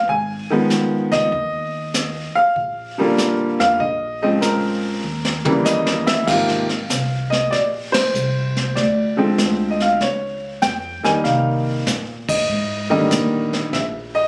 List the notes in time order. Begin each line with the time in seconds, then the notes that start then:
0.08 G#1 G#5, brush sweep, kick
0.50 D#3 F3 G#3 B3
0.70 snare, hi-hat pedal
1.11 C#2 D#5, snare
1.32 D#2, brush sweep, kick
1.94 snare, hi-hat pedal
2.35 F5, muted upright bass stroke
2.56 A#1, brush sweep, kick
2.98 D3 F3 G3 A#3
3.18 snare, hi-hat pedal
3.60 F2 F5, snare
3.80 A#1 D#5, brush sweep, kick
4.22 C#3 F3 G#3 C4 D#5
4.41 A#4, snare, hi-hat pedal
5.04 D#2
5.25 snare
5.44 C#3 E3 G3 A#3, high tom
5.65 D#5, snare, hi-hat pedal
5.87 snare
6.07 E5, snare
6.27 G#1 C3 D#3 F3 A#3 F5, brush sweep, kick, snare, crash
6.48 snare
6.69 snare
6.89 C2, kick, snare, hi-hat pedal
7.30 D#5, snare
7.51 A#1 D5, brush sweep, kick, snare
7.92 C5, snare, ride
8.14 C2, hi-hat pedal
8.57 snare
8.75 D2 D5, brush sweep, kick, snare
9.17 D3 F3 G#3 C4
9.38 D2, kick, snare, hi-hat pedal
9.70 D#5
9.80 F5, snare
10.00 C#2 C#5, brush sweep, kick, snare
10.62 F2 G5, kick, snare, hi-hat pedal
11.03 D#3 G3 A#3 D#4 G#5, muted upright bass stroke, snare
11.24 C3 F5, brush sweep, kick, snare
11.86 A#2, kick, snare, hi-hat pedal
12.29 D#5, kick, ride
12.49 G#2, brush sweep
12.90 D3 D#3 G3 A#3 D#5
13.11 A#2, kick, snare, hi-hat pedal
13.53 snare
13.73 A#1 E5, brush sweep, kick, snare
14.15 D#5